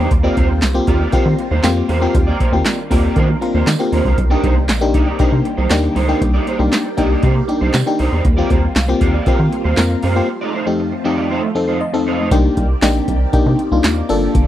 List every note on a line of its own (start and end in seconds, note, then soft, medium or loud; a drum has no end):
0.00 4.14 G3 medium
0.00 8.20 A#3 medium
0.00 0.11 D#4 medium
0.00 0.10 G4 medium
0.00 0.11 C5 medium
0.11 0.29 D#2 loud
0.11 12.28 D#3 medium
0.11 2.13 C4 medium
0.11 4.14 F4 medium
0.11 muted clean electric guitar stroke soft
0.11 kick loud
0.11 closed hi-hat medium
0.23 0.59 A#3 medium
0.23 0.35 A#3 medium
0.23 0.59 C4 medium
0.23 0.59 F4 medium
0.23 0.35 F4 medium
0.23 0.36 G4 medium
0.23 0.59 G4 medium
0.23 0.37 D5 medium
0.36 0.64 D#2 loud
0.36 0.51 A#3 medium
0.36 0.49 F4 medium
0.36 0.49 G4 medium
0.36 0.48 C5 medium
0.36 kick loud
0.36 closed hi-hat medium
0.49 muted clean electric guitar stroke medium
0.62 0.80 C2 loud
0.62 muted clean electric guitar stroke soft
0.62 snare loud
0.62 clap medium
0.62 closed hi-hat medium
0.62 tambourine medium
0.74 1.01 A#3 medium
0.74 1.01 C4 medium
0.74 1.01 F4 medium
0.74 1.01 G4 loud
0.74 muted clean electric guitar stroke soft
0.87 1.06 D#2 loud
0.87 1.00 A#3 medium
0.87 1.00 F4 medium
0.87 0.99 G4 medium
0.87 0.99 D5 medium
0.87 kick medium
0.87 closed hi-hat medium
1.00 1.12 A#3 soft
1.00 1.13 F4 medium
1.00 1.13 G4 medium
1.00 1.14 D5 medium
1.12 1.18 D#3 soft
1.12 1.48 A#3 medium
1.12 1.32 A#3 medium
1.12 1.48 C4 medium
1.12 1.48 F4 medium
1.12 1.26 F4 medium
1.12 1.48 G4 medium
1.12 1.25 G4 medium
1.12 1.25 C5 medium
1.12 kick loud
1.12 closed hi-hat medium
1.26 1.35 D#3 loud
1.26 muted clean electric guitar stroke soft
1.39 muted clean electric guitar stroke soft
1.39 closed hi-hat medium
1.51 1.60 D#2 loud
1.51 1.63 A#3 medium
1.51 1.63 F4 medium
1.51 1.63 G4 medium
1.51 1.64 C5 medium
1.63 1.82 F2 medium
1.63 1.90 A#3 loud
1.63 1.90 C4 medium
1.63 1.90 F4 medium
1.63 1.90 G4 loud
1.63 muted clean electric guitar stroke soft
1.63 snare loud
1.63 clap medium
1.63 closed hi-hat medium
1.63 tambourine medium
1.77 muted clean electric guitar stroke medium
1.89 2.07 E2 medium
1.89 2.02 A#3 medium
1.89 2.02 F4 medium
1.89 2.01 G4 loud
1.89 2.00 C5 medium
1.89 open hi-hat medium
2.01 2.37 A#3 medium
2.01 2.13 A#3 medium
2.01 2.37 C4 medium
2.01 2.37 F4 medium
2.01 2.13 F4 medium
2.01 2.37 G4 loud
2.01 2.14 G4 medium
2.01 2.14 C5 medium
2.14 2.33 D#2 loud
2.14 4.16 D4 medium
2.14 muted clean electric guitar stroke soft
2.14 kick loud
2.14 closed hi-hat medium
2.27 2.38 A#3 medium
2.27 2.39 F4 medium
2.27 2.39 G4 medium
2.27 2.40 D5 medium
2.39 2.54 A#3 medium
2.39 2.52 F4 medium
2.39 2.52 G4 medium
2.39 2.51 C5 medium
2.39 kick medium
2.39 closed hi-hat medium
2.52 2.62 D#2 loud
2.52 2.79 A#3 medium
2.52 2.79 C4 medium
2.52 2.79 F4 medium
2.52 2.80 G4 medium
2.52 muted clean electric guitar stroke soft
2.65 muted clean electric guitar stroke soft
2.65 snare loud
2.65 clap medium
2.65 closed hi-hat medium
2.65 tambourine medium
2.78 muted clean electric guitar stroke soft
2.90 3.09 D#2 loud
2.90 3.04 A#3 medium
2.90 3.26 A#3 medium
2.90 3.26 C4 medium
2.90 3.03 F4 medium
2.90 3.26 F4 medium
2.90 3.26 G4 medium
2.90 3.03 G4 loud
2.90 3.02 D5 loud
2.90 kick medium
2.90 open hi-hat medium
3.03 3.15 A#3 medium
3.03 3.16 F4 medium
3.03 3.16 G4 medium
3.03 3.17 D5 medium
3.16 3.35 D#3 medium
3.16 3.35 A#3 medium
3.16 3.29 F4 medium
3.16 3.29 G4 medium
3.16 3.28 C5 loud
3.16 kick loud
3.16 closed hi-hat medium
3.29 muted clean electric guitar stroke soft
3.41 3.68 A#3 medium
3.41 3.68 C4 medium
3.41 3.68 F4 medium
3.41 3.68 A#4 medium
3.41 muted clean electric guitar stroke soft
3.41 closed hi-hat medium
3.54 3.63 D#2 medium
3.54 3.66 A#3 medium
3.54 3.66 F4 medium
3.54 3.67 G4 medium
3.54 3.67 C5 medium
3.67 3.76 D#3 medium
3.67 muted clean electric guitar stroke soft
3.67 snare loud
3.67 clap medium
3.67 closed hi-hat medium
3.67 tambourine medium
3.79 4.15 A#3 medium
3.79 4.15 C4 medium
3.79 4.15 F4 medium
3.79 4.15 G4 medium
3.79 muted clean electric guitar stroke medium
3.92 4.02 D#2 medium
3.92 4.06 A#3 medium
3.92 4.05 F4 medium
3.92 4.05 G4 loud
3.92 4.04 C5 loud
3.92 open hi-hat medium
4.05 4.14 C#2 medium
4.05 4.17 A#3 soft
4.05 4.18 F4 medium
4.05 4.18 G4 medium
4.05 4.18 C5 medium
4.05 kick medium
4.18 4.36 C2 loud
4.18 10.24 G3 medium
4.18 6.19 C4 medium
4.18 8.21 G4 medium
4.18 muted clean electric guitar stroke soft
4.18 kick loud
4.18 closed hi-hat medium
4.30 4.66 A#3 medium
4.30 4.42 A#3 medium
4.30 4.66 D4 medium
4.30 4.66 D#4 medium
4.30 4.42 D#4 medium
4.30 4.43 G4 medium
4.30 4.66 G4 medium
4.30 4.44 D5 medium
4.43 4.70 C2 loud
4.43 4.58 A#3 medium
4.43 4.56 D#4 medium
4.43 4.55 G4 medium
4.43 4.55 C5 medium
4.43 kick loud
4.43 closed hi-hat medium
4.56 muted clean electric guitar stroke soft
4.69 4.96 A#1 loud
4.69 muted clean electric guitar stroke soft
4.69 snare loud
4.69 clap loud
4.69 closed hi-hat medium
4.69 tambourine medium
4.81 5.08 A#3 medium
4.81 5.08 D4 medium
4.81 5.08 D#4 medium
4.81 5.08 G4 loud
4.81 muted clean electric guitar stroke soft
4.94 5.12 C2 loud
4.94 5.07 A#3 medium
4.94 5.06 D#4 medium
4.94 5.06 G4 medium
4.94 5.06 D5 medium
4.94 kick medium
4.94 closed hi-hat medium
5.07 5.18 A#3 medium
5.07 5.19 D#4 medium
5.07 5.19 G4 medium
5.07 5.21 D5 medium
5.19 5.25 C3 soft
5.19 5.55 A#3 medium
5.19 5.38 A#3 medium
5.19 5.55 D4 medium
5.19 5.55 D#4 medium
5.19 5.32 D#4 loud
5.19 5.55 G4 loud
5.19 5.32 G4 medium
5.19 5.31 C5 loud
5.19 kick loud
5.19 closed hi-hat medium
5.32 5.41 C3 loud
5.32 muted clean electric guitar stroke soft
5.45 muted clean electric guitar stroke soft
5.45 closed hi-hat medium
5.57 5.67 C2 loud
5.57 5.69 A#3 medium
5.57 5.70 D#4 medium
5.57 5.70 G4 medium
5.57 5.70 C5 medium
5.70 5.89 D#2 medium
5.70 5.97 A#3 medium
5.70 5.97 D4 medium
5.70 5.97 D#4 medium
5.70 5.97 G4 loud
5.70 muted clean electric guitar stroke soft
5.70 snare loud
5.70 clap loud
5.70 closed hi-hat medium
5.70 tambourine medium
5.83 muted clean electric guitar stroke medium
5.95 6.14 C#2 medium
5.95 6.08 A#3 medium
5.95 6.08 D#4 medium
5.95 6.07 G4 medium
5.95 6.07 C5 medium
5.95 open hi-hat medium
6.08 6.44 A#3 medium
6.08 6.20 A#3 medium
6.08 6.44 D4 medium
6.08 6.44 D#4 medium
6.08 6.20 D#4 medium
6.08 6.20 G4 medium
6.08 6.44 G4 loud
6.08 6.21 C5 medium
6.21 6.40 C2 loud
6.21 8.22 D5 medium
6.21 muted clean electric guitar stroke soft
6.21 kick loud
6.21 closed hi-hat medium
6.34 6.45 A#3 medium
6.34 6.46 D#4 medium
6.34 6.46 G4 medium
6.34 6.48 D5 medium
6.46 6.61 A#3 medium
6.46 6.59 D#4 medium
6.46 6.59 G4 medium
6.46 6.58 C5 medium
6.46 closed hi-hat medium
6.59 6.68 C2 loud
6.59 6.86 A#3 medium
6.59 6.86 D4 medium
6.59 6.86 D#4 medium
6.59 6.86 G4 medium
6.59 muted clean electric guitar stroke medium
6.72 muted clean electric guitar stroke soft
6.72 snare loud
6.72 clap medium
6.72 closed hi-hat medium
6.72 tambourine medium
6.85 muted clean electric guitar stroke soft
6.97 7.16 C2 medium
6.97 7.33 A#3 medium
6.97 7.10 A#3 medium
6.97 7.33 D4 medium
6.97 7.33 D#4 medium
6.97 7.10 D#4 medium
6.97 7.33 G4 medium
6.97 7.10 G4 medium
6.97 7.09 D5 medium
6.97 kick medium
6.97 closed hi-hat medium
7.10 7.21 A#3 soft
7.10 7.22 D#4 medium
7.10 7.22 G4 medium
7.10 7.24 D5 medium
7.22 7.41 C3 loud
7.22 7.41 A#3 medium
7.22 7.35 D#4 medium
7.22 7.35 G4 loud
7.22 7.34 C5 medium
7.22 kick loud
7.22 closed hi-hat medium
7.36 muted clean electric guitar stroke soft
7.48 7.75 A#3 medium
7.48 7.75 D4 medium
7.48 7.75 D#4 medium
7.48 7.75 G4 medium
7.48 muted clean electric guitar stroke soft
7.48 closed hi-hat medium
7.61 7.70 C2 loud
7.61 7.72 A#3 medium
7.61 7.73 D#4 medium
7.61 7.73 G4 medium
7.61 7.73 C5 medium
7.74 7.83 C3 loud
7.74 muted clean electric guitar stroke soft
7.74 snare loud
7.74 clap loud
7.74 closed hi-hat medium
7.74 tambourine medium
7.86 8.22 A#3 medium
7.86 8.22 D4 medium
7.86 8.22 D#4 medium
7.86 8.22 G4 loud
7.86 muted clean electric guitar stroke medium
7.99 8.09 C2 medium
7.99 8.12 A#3 medium
7.99 8.12 D#4 medium
7.99 8.11 G4 medium
7.99 8.11 C5 medium
7.99 open hi-hat medium
8.12 8.21 E2 medium
8.12 8.24 A#3 medium
8.12 8.25 D#4 medium
8.12 8.24 G4 medium
8.12 8.24 C5 medium
8.25 8.43 D#2 loud
8.25 10.27 A#3 medium
8.25 12.28 C4 medium
8.25 10.26 F4 medium
8.25 muted clean electric guitar stroke soft
8.25 kick loud
8.25 closed hi-hat medium
8.37 8.73 A#3 medium
8.37 8.48 A#3 medium
8.37 8.73 C4 medium
8.37 8.49 F4 medium
8.37 8.73 F4 medium
8.37 8.49 G4 medium
8.37 8.73 G4 medium
8.37 8.51 D5 loud
8.50 8.69 D#2 loud
8.50 8.64 A#3 medium
8.50 8.63 F4 medium
8.50 8.62 G4 medium
8.50 8.62 C5 medium
8.50 kick loud
8.50 closed hi-hat medium
8.63 muted clean electric guitar stroke soft
8.76 8.94 C2 loud
8.76 muted clean electric guitar stroke soft
8.76 snare loud
8.76 clap medium
8.76 closed hi-hat medium
8.76 tambourine medium
8.88 9.15 A#3 medium
8.88 9.15 C4 medium
8.88 9.15 F4 medium
8.88 9.15 G4 loud
8.88 muted clean electric guitar stroke soft
9.01 9.19 D#2 loud
9.01 9.14 A#3 medium
9.01 9.13 F4 medium
9.01 9.13 G4 medium
9.01 9.12 D5 medium
9.01 kick medium
9.01 closed hi-hat medium
9.14 9.25 A#3 medium
9.14 9.26 F4 medium
9.14 9.26 G4 medium
9.14 9.27 D5 medium
9.26 9.32 D#3 medium
9.26 9.45 A#3 medium
9.26 9.62 A#3 medium
9.26 9.62 C4 medium
9.26 9.39 F4 loud
9.26 9.62 F4 medium
9.26 9.39 G4 medium
9.26 9.62 G4 medium
9.26 9.38 C5 medium
9.26 kick loud
9.26 closed hi-hat medium
9.39 9.48 D#3 loud
9.39 muted clean electric guitar stroke soft
9.52 muted clean electric guitar stroke soft
9.52 closed hi-hat medium
9.64 9.74 D#2 loud
9.64 9.76 A#3 medium
9.64 9.77 F4 medium
9.64 9.77 G4 medium
9.64 9.77 C5 medium
9.77 9.96 F2 medium
9.77 10.04 A#3 medium
9.77 10.04 C4 medium
9.77 10.04 F4 medium
9.77 10.04 A#4 loud
9.77 muted clean electric guitar stroke soft
9.77 snare loud
9.77 clap loud
9.77 closed hi-hat medium
9.77 tambourine medium
9.90 muted clean electric guitar stroke soft
10.03 10.21 F#2 medium
10.03 10.16 A#3 medium
10.03 10.16 F4 medium
10.03 10.15 G4 medium
10.03 10.15 C5 loud
10.03 open hi-hat medium
10.16 10.28 A#3 medium
10.16 10.28 C4 medium
10.16 10.28 F4 medium
10.16 10.29 G4 medium
10.16 10.28 C5 medium
10.28 12.30 F3 medium
10.28 12.30 A3 medium
10.28 12.30 F4 medium
10.28 muted clean electric guitar stroke soft
10.41 10.53 A3 medium
10.41 10.53 D#4 medium
10.41 10.54 F4 medium
10.41 10.55 D5 medium
10.54 10.68 A3 medium
10.54 10.67 D#4 medium
10.54 10.66 F4 medium
10.54 10.66 C5 medium
10.66 10.93 F2 medium
10.66 10.93 A3 medium
10.66 10.93 C4 medium
10.66 10.93 D#4 medium
10.66 10.93 G4 medium
10.66 muted clean electric guitar stroke soft
10.79 muted clean electric guitar stroke soft
10.92 muted clean electric guitar stroke soft
11.04 11.40 F2 medium
11.04 11.40 A3 medium
11.04 11.18 A3 medium
11.04 11.40 C4 medium
11.04 11.40 D#4 medium
11.04 11.17 D#4 medium
11.04 11.17 F4 medium
11.04 11.40 G4 medium
11.04 11.16 D5 medium
11.17 11.29 A3 medium
11.17 11.29 D#4 medium
11.17 11.30 F4 medium
11.17 11.31 D5 medium
11.30 11.49 A3 medium
11.30 11.43 D#4 medium
11.30 11.42 F4 medium
11.30 11.42 C5 medium
11.43 muted clean electric guitar stroke soft
11.55 11.82 F2 medium
11.55 11.82 A3 medium
11.55 11.82 C4 medium
11.55 11.82 D#4 medium
11.55 11.82 A4 medium
11.55 muted clean electric guitar stroke soft
11.68 11.80 A3 medium
11.68 11.80 D#4 medium
11.68 11.81 F4 medium
11.68 11.81 C5 medium
11.81 12.28 D#5 medium
11.81 muted clean electric guitar stroke soft
11.93 12.29 F2 medium
11.93 12.29 A3 medium
11.93 12.29 C4 medium
11.93 12.29 D#4 medium
11.93 12.29 A4 medium
11.93 muted clean electric guitar stroke medium
12.07 12.20 A3 medium
12.07 12.19 D#4 medium
12.07 12.19 F4 medium
12.07 12.18 C5 medium
12.19 12.34 A3 soft
12.19 12.34 D#4 medium
12.19 12.34 F4 medium
12.19 12.33 C5 medium
12.31 12.50 C2 loud
12.31 14.08 D#3 medium
12.31 12.67 A#3 loud
12.31 14.47 A#3 medium
12.31 14.08 C4 medium
12.31 12.67 D4 medium
12.31 12.67 D#4 medium
12.31 14.07 G4 medium
12.31 12.67 G4 loud
12.31 14.47 D5 medium
12.31 kick loud
12.31 closed hi-hat medium
12.57 12.75 C2 loud
12.57 kick medium
12.57 closed hi-hat medium
12.82 13.01 A#1 medium
12.82 13.18 A#3 medium
12.82 13.18 D4 medium
12.82 13.18 D#4 medium
12.82 13.18 G4 loud
12.82 snare loud
12.82 clap loud
12.82 closed hi-hat medium
12.82 tambourine medium
13.08 13.26 C2 loud
13.08 kick medium
13.08 closed hi-hat medium
13.33 13.38 C3 soft
13.33 13.60 A#3 loud
13.33 13.60 D4 medium
13.33 13.60 D#4 medium
13.33 13.60 G4 loud
13.33 kick loud
13.33 closed hi-hat medium
13.46 13.55 C3 loud
13.59 closed hi-hat medium
13.72 13.81 C2 loud
13.72 14.07 A#3 medium
13.72 14.07 D4 medium
13.72 14.07 D#4 medium
13.72 14.07 F4 loud
13.84 14.02 D#2 medium
13.84 snare loud
13.84 clap loud
13.84 closed hi-hat medium
13.84 tambourine loud
14.09 14.28 G1 medium
14.09 14.47 F3 medium
14.09 14.47 A#3 loud
14.09 14.47 D4 loud
14.09 14.47 F4 medium
14.09 14.47 G4 medium
14.09 14.47 A4 medium
14.09 14.47 A4 loud
14.09 open hi-hat medium
14.35 14.47 G1 loud
14.35 kick loud
14.35 closed hi-hat medium